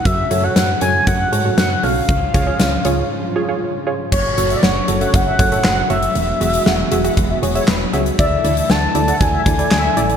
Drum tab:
CC |----------------|----------------|x---------------|----------------|
HH |x-x-x-x-x-x-x-o-|x-x-x-x---------|--xx--xxx-xx--xx|x-xx--xxx-xx--xx|
CP |----------------|----------------|------------x---|------------x---|
SD |----o-------o---|----o-----------|----o-------o---|----o-------o---|
BD |o-------o-------|o-o-------------|o-------o-o-----|--------o-------|

CC |----------------|
HH |x-xx--xxx-xx--xx|
CP |------------x---|
SD |----o-------o---|
BD |o-------o-o-----|